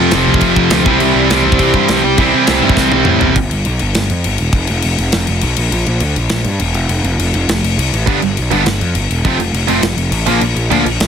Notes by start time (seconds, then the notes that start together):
Already playing: F2 C3 F3 A3 C4 F4
0.00 F2
0.11 F1 F2 C3, snare, crash
0.16 F3
0.27 C2
0.34 kick
0.41 F1, kick, crash
0.56 F1, kick
0.70 D2, snare, crash
0.85 C2 C3 E3 G3 C4 E4, kick
1.00 C2, crash
1.15 C2
1.30 C2 C3 G3 C4, snare, crash
1.45 C2
1.52 kick
1.59 C2, kick, crash
1.74 G2, kick
1.88 C2, snare, crash
2.04 C2
2.16 C2 C3 E3 G3 C4, kick, crash
2.21 C4 E4
2.34 C3
2.47 C2, snare, crash
2.62 G2 C3 G3 C4
2.69 kick
2.77 C2, kick, snare
2.92 C2, high tom
3.05 A2, mid tom
3.21 G1, floor tom
3.36 G1, kick, crash
3.51 G1, crash
3.65 B1, crash
3.79 G1, crash
3.94 G1, snare, crash
4.10 F2, crash
4.24 G1, crash
4.38 E1, crash
4.53 F1, kick, crash
4.67 F1, crash
4.82 F1, crash
4.98 F1, crash
5.12 F1, snare, crash
5.27 F1, crash
5.41 B1, crash
5.57 A#1, crash
5.71 A#1, crash
5.86 A#1, crash
6.00 D2, crash
6.16 A#1, crash
6.29 A#1, snare, crash
6.44 G2, crash
6.60 E1, crash
6.74 F1, crash
6.89 F1, crash
7.04 F1, crash
7.19 F1, crash
7.34 F1, crash
7.48 F1, snare, crash
7.63 F1, crash
7.78 C2, crash
7.93 A1, crash
8.06 G1 G2 D3 G3 B3 D4, kick
8.22 G1, crash
8.37 B1, crash
8.51 G1 G2 D3 G3 B3 D4, crash
8.66 G1, snare, crash
8.81 F2, crash
8.95 G1, crash
9.10 E1, crash
9.25 F1 F2 C3 F3 A3 C4, kick, crash
9.39 F1, crash
9.53 F1, crash
9.68 F1 F2 C3 F3 A3 C4, crash
9.82 F1, snare, crash
9.97 F1, crash
10.11 A1, crash
10.26 A#1 A#2 F3 A#3 D4, crash
10.41 A#1, crash
10.56 A#1, crash
10.71 D2 A#2 F3 A#3 D4, crash
10.85 A#1, crash
11.00 A#1, snare, crash